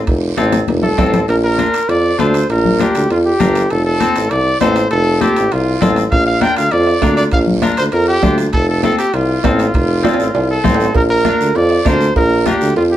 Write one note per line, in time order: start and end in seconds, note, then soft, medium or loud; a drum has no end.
0.07 0.32 F1 medium
0.07 bombo low medium
0.07 high conga soft
0.07 high timbale medium
0.07 long guiro medium
0.37 0.62 A1 medium
0.37 0.59 C4 medium
0.37 0.59 F4 medium
0.37 0.59 A4 medium
0.37 bombo rim medium
0.37 high conga medium
0.37 high timbale medium
0.37 short guiro medium
0.52 high conga medium
0.52 high timbale medium
0.52 short guiro medium
0.68 0.92 F1 medium
0.68 high conga medium
0.68 high timbale medium
0.68 long guiro medium
0.83 1.25 A4 medium
0.83 bombo rim medium
0.83 low conga medium
0.98 1.23 A1 medium
0.98 1.19 C4 medium
0.98 1.19 F4 medium
0.98 1.20 A4 medium
0.98 bombo low medium
0.98 bombo rim medium
0.98 low conga medium
0.98 high timbale medium
0.98 low timbale medium
0.98 short guiro medium
1.13 low conga loud
1.13 high timbale medium
1.13 short guiro medium
1.28 1.64 A#1 medium
1.28 1.36 A#4 medium
1.28 high conga soft
1.28 high timbale medium
1.28 long guiro medium
1.44 1.91 A#4 medium
1.58 1.79 D4 medium
1.58 1.80 F4 medium
1.58 1.80 A#4 medium
1.58 high conga medium
1.58 high timbale medium
1.58 short guiro medium
1.74 high timbale medium
1.74 short guiro medium
1.88 2.13 F2 medium
1.88 2.21 D5 medium
1.88 high conga soft
1.88 high timbale medium
1.88 long guiro medium
2.18 2.43 D2 medium
2.18 2.40 D4 medium
2.18 2.40 F4 medium
2.18 2.40 A4 medium
2.18 2.49 C5 medium
2.18 high conga medium
2.18 high timbale medium
2.18 short guiro medium
2.34 high timbale medium
2.34 short guiro medium
2.49 2.85 A#1 medium
2.49 2.83 A#4 medium
2.49 high conga soft
2.49 high timbale medium
2.49 long guiro medium
2.65 low conga medium
2.79 3.01 D4 medium
2.79 3.01 F4 medium
2.79 3.11 G4 medium
2.79 3.01 A#4 medium
2.79 high conga medium
2.79 high timbale medium
2.79 short guiro medium
2.95 3.07 D2 medium
2.95 high timbale medium
2.95 short guiro medium
3.10 3.34 F2 loud
3.10 3.18 F4 medium
3.10 high conga soft
3.10 high timbale medium
3.10 long guiro medium
3.26 3.72 G4 medium
3.40 3.64 G1 medium
3.40 3.61 D4 medium
3.40 3.61 F4 medium
3.40 3.61 A#4 medium
3.40 high conga medium
3.40 low conga medium
3.40 high timbale medium
3.40 short guiro medium
3.55 high timbale medium
3.55 short guiro medium
3.70 4.07 F1 medium
3.70 3.85 A4 medium
3.70 high conga soft
3.70 high timbale medium
3.70 long guiro medium
3.85 4.32 A4 medium
4.00 4.21 C4 medium
4.00 4.22 F4 medium
4.00 4.22 A4 medium
4.00 high conga medium
4.00 high timbale medium
4.00 short guiro medium
4.16 4.28 A1 medium
4.16 high timbale medium
4.16 short guiro medium
4.31 4.55 C2 medium
4.31 4.60 D5 medium
4.31 high conga soft
4.31 high timbale medium
4.31 long guiro medium
4.61 4.85 A1 medium
4.61 4.82 C4 medium
4.61 4.82 F4 medium
4.61 4.82 A4 medium
4.61 4.89 C5 medium
4.61 high conga medium
4.61 high timbale medium
4.61 low timbale medium
4.61 short guiro medium
4.76 high timbale medium
4.76 short guiro medium
4.91 5.27 F1 medium
4.91 5.23 A4 loud
4.91 high conga soft
4.91 high timbale medium
4.91 long guiro medium
5.21 5.42 C4 medium
5.21 5.42 F4 medium
5.21 5.54 G4 medium
5.21 5.43 A4 medium
5.21 high conga medium
5.21 high timbale medium
5.21 short guiro medium
5.36 5.49 A1 medium
5.36 high timbale medium
5.36 short guiro medium
5.52 5.76 C2 medium
5.52 5.97 F4 medium
5.52 high conga soft
5.52 high timbale medium
5.52 long guiro medium
5.81 6.06 A1 medium
5.81 6.02 C4 medium
5.81 6.03 F4 medium
5.81 6.03 A4 medium
5.81 high conga medium
5.81 low conga medium
5.81 high timbale medium
5.81 low timbale medium
5.81 short guiro medium
5.96 high timbale medium
5.96 short guiro medium
6.11 6.48 A#1 medium
6.11 6.25 F5 loud
6.11 bombo low medium
6.11 high conga soft
6.11 high timbale medium
6.11 long guiro medium
6.26 6.43 F5 loud
6.41 6.63 D4 medium
6.41 6.63 F4 medium
6.41 6.63 A#4 medium
6.41 6.56 G5 loud
6.41 bombo rim medium
6.41 high conga medium
6.41 high timbale medium
6.41 short guiro medium
6.56 6.69 D2 medium
6.56 6.74 F5 medium
6.56 high timbale medium
6.56 short guiro medium
6.71 6.97 F2 loud
6.71 7.16 D5 medium
6.71 high conga soft
6.71 high timbale medium
6.71 long guiro medium
6.87 bombo rim medium
7.02 7.26 D2 medium
7.02 7.23 D4 medium
7.02 7.24 F4 medium
7.02 7.24 A#4 medium
7.02 bombo low medium
7.02 bombo rim medium
7.02 high conga medium
7.02 high timbale medium
7.02 low timbale medium
7.02 short guiro medium
7.17 7.24 D5 medium
7.17 high timbale medium
7.17 short guiro medium
7.32 7.69 A#1 loud
7.32 7.40 F5 medium
7.32 bombo low medium
7.32 high conga soft
7.32 high timbale medium
7.32 long guiro medium
7.47 low conga medium
7.62 7.84 D4 medium
7.62 7.84 F4 medium
7.62 7.84 A#4 medium
7.62 bombo rim medium
7.62 high conga medium
7.62 high timbale medium
7.62 short guiro medium
7.77 7.90 D2 medium
7.77 7.85 C5 medium
7.77 high timbale medium
7.77 short guiro medium
7.92 8.17 F2 medium
7.92 8.07 A#4 medium
7.92 high conga soft
7.92 high timbale medium
7.92 long guiro medium
8.08 8.36 G4 loud
8.23 8.47 D2 medium
8.23 8.44 D4 medium
8.23 8.44 F4 medium
8.23 8.45 C5 medium
8.23 bombo low medium
8.23 bombo rim medium
8.23 high conga medium
8.23 low conga medium
8.23 high timbale medium
8.23 low timbale medium
8.23 short guiro medium
8.38 high timbale medium
8.38 short guiro medium
8.53 8.90 F1 loud
8.53 8.67 A4 medium
8.53 bombo low medium
8.53 high conga soft
8.53 high timbale medium
8.53 long guiro medium
8.69 8.83 A4 medium
8.83 9.05 C4 medium
8.83 9.05 F4 medium
8.83 8.98 A4 medium
8.83 9.05 A4 medium
8.83 bombo rim medium
8.83 high conga medium
8.83 high timbale medium
8.83 short guiro medium
8.99 9.16 G4 medium
8.99 high timbale medium
8.99 short guiro medium
9.13 9.38 C2 medium
9.13 10.50 F4 medium
9.13 high conga soft
9.13 high timbale medium
9.13 long guiro medium
9.44 9.68 A1 medium
9.44 9.65 C4 medium
9.44 9.66 F4 medium
9.44 9.66 A4 medium
9.44 bombo low medium
9.44 bombo rim medium
9.44 high conga medium
9.44 high timbale medium
9.44 low timbale medium
9.44 short guiro medium
9.59 high timbale medium
9.59 short guiro medium
9.74 10.11 F1 medium
9.74 bombo low medium
9.74 high conga soft
9.74 high timbale medium
9.74 long guiro medium
10.03 10.25 C4 medium
10.03 10.25 F4 medium
10.03 10.25 A4 medium
10.03 bombo rim medium
10.03 high conga medium
10.03 high timbale medium
10.03 short guiro medium
10.14 high timbale medium
10.19 10.31 A1 medium
10.19 short guiro medium
10.34 10.59 C2 medium
10.34 high conga soft
10.34 high timbale medium
10.34 long guiro medium
10.51 10.93 A4 medium
10.64 10.89 A1 medium
10.64 10.86 C4 medium
10.64 10.86 F4 medium
10.64 10.86 C5 medium
10.64 bombo low medium
10.64 bombo rim medium
10.64 high conga medium
10.64 low conga medium
10.64 short guiro medium
10.75 low timbale medium
10.80 short guiro medium
10.85 low timbale medium
10.95 11.31 A#1 medium
10.95 11.03 A#4 medium
10.95 bombo low medium
10.95 cowbell loud
10.95 high conga soft
10.95 long guiro medium
11.10 11.58 A#4 medium
11.25 11.46 D4 medium
11.25 11.46 F4 medium
11.25 11.47 A#4 medium
11.25 bombo rim medium
11.25 high conga medium
11.25 short guiro medium
11.40 11.52 D2 medium
11.40 short guiro medium
11.55 11.79 F2 loud
11.55 11.86 D5 medium
11.55 cowbell medium
11.55 high conga soft
11.55 long guiro medium
11.70 bombo rim medium
11.85 12.10 D2 medium
11.85 12.07 D4 medium
11.85 12.07 F4 medium
11.85 12.07 A#4 medium
11.85 12.14 C5 medium
11.85 bombo low medium
11.85 bombo rim medium
11.85 high conga medium
11.85 low timbale medium
11.85 short guiro medium
12.01 short guiro medium
12.16 12.52 A#1 loud
12.16 12.48 A#4 medium
12.16 bombo low medium
12.16 cowbell loud
12.16 long guiro medium
12.46 12.67 D4 medium
12.46 12.67 F4 medium
12.46 12.76 G4 medium
12.46 12.68 A#4 medium
12.46 bombo rim medium
12.46 high conga medium
12.46 short guiro medium
12.61 12.73 D2 medium
12.61 short guiro medium
12.76 12.97 F2 loud
12.76 12.83 F4 medium
12.76 cowbell medium
12.76 high conga soft
12.76 long guiro medium
12.92 12.97 G4 medium